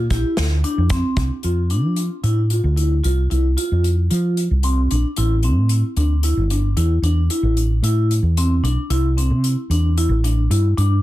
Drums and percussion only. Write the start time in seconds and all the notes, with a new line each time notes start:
0.10 kick, closed hi-hat
0.37 snare, closed hi-hat
0.64 closed hi-hat
0.90 kick, closed hi-hat
1.17 kick, closed hi-hat
1.43 closed hi-hat
1.70 closed hi-hat
1.96 closed hi-hat
2.24 closed hi-hat
2.50 closed hi-hat
2.77 closed hi-hat
3.04 closed hi-hat
3.31 closed hi-hat
3.58 closed hi-hat
3.84 closed hi-hat
4.11 closed hi-hat
4.37 closed hi-hat
4.63 closed hi-hat
4.91 closed hi-hat
5.16 closed hi-hat
5.43 closed hi-hat
5.69 closed hi-hat
5.96 closed hi-hat
6.23 closed hi-hat
6.50 closed hi-hat
6.77 closed hi-hat
7.03 closed hi-hat
7.30 closed hi-hat
7.57 closed hi-hat
7.84 closed hi-hat
8.11 closed hi-hat
8.37 closed hi-hat
8.65 closed hi-hat
8.90 closed hi-hat
9.18 closed hi-hat
9.44 closed hi-hat
9.71 closed hi-hat
9.97 closed hi-hat
10.24 closed hi-hat
10.51 closed hi-hat
10.78 closed hi-hat